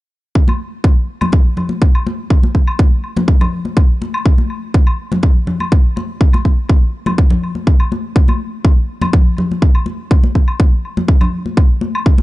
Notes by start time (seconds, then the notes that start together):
0.35 kick
0.48 high conga, high woodblock
0.84 kick, high conga, high woodblock
1.21 high conga, low conga, high woodblock
1.32 kick, low conga
1.57 low conga, high woodblock
1.69 high conga
1.82 kick
1.95 high woodblock
2.07 high conga
2.30 kick, high woodblock
2.43 high conga
2.55 kick
2.67 high woodblock
2.79 kick, high conga
3.04 high woodblock
3.16 high conga, low conga
3.28 kick
3.41 low conga, high woodblock
3.65 high conga
3.77 kick, high woodblock
4.02 high conga
4.14 high woodblock
4.26 kick
4.38 high conga
4.50 high woodblock
4.74 kick, high conga
4.87 high woodblock
5.12 high conga, low conga
5.23 kick, low conga, high woodblock
5.47 low conga
5.60 high conga, high woodblock
5.72 kick
5.96 high conga, high woodblock
6.21 kick
6.33 high conga, high woodblock
6.45 kick
6.69 kick, high conga, high woodblock
7.06 high conga, low conga, high woodblock
7.18 kick
7.30 low conga
7.44 high woodblock
7.55 high conga
7.67 kick
7.80 high woodblock
7.92 high conga
8.16 kick
8.28 high conga, high woodblock
8.65 kick, high conga, high woodblock
9.01 high conga, low conga, high woodblock
9.13 kick, low conga
9.37 low conga, high woodblock
9.51 high conga
9.62 kick
9.75 high woodblock
9.86 high conga
10.11 kick, high woodblock
10.24 high conga
10.35 kick
10.48 high woodblock
10.60 kick, high conga
10.85 high woodblock
10.97 high conga, low conga
11.08 kick
11.21 low conga, high woodblock
11.46 high conga
11.57 kick, high woodblock
11.81 high conga
11.95 high woodblock
12.06 kick
12.18 high conga